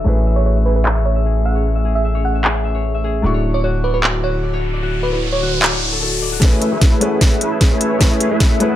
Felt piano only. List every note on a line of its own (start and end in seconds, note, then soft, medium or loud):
0.04 3.21 A3 medium
0.04 3.21 C#4 medium
0.04 3.22 E4 medium
0.04 3.22 G#4 medium
0.04 3.23 B4 medium
3.22 6.38 A3 medium
3.22 6.39 D4 medium
3.22 6.40 E4 medium
3.22 6.40 F#4 medium
3.22 6.41 C#6 medium
6.40 6.98 A3 medium
6.40 6.99 C#4 medium
6.40 6.99 E4 medium
6.40 7.00 G#4 medium
6.44 7.00 B4 medium
7.00 7.11 A3 medium
7.00 7.11 C#4 medium
7.00 7.12 E4 medium
7.00 7.12 G#4 medium
7.00 7.12 B4 medium
7.99 8.57 A3 medium
7.99 8.58 C#4 medium
7.99 8.58 E4 medium
7.99 8.59 G#4 medium
7.99 8.59 B4 medium
8.59 8.70 A3 medium
8.59 8.70 C#4 medium
8.59 8.71 E4 medium
8.59 8.71 G#4 medium
8.59 8.71 B4 loud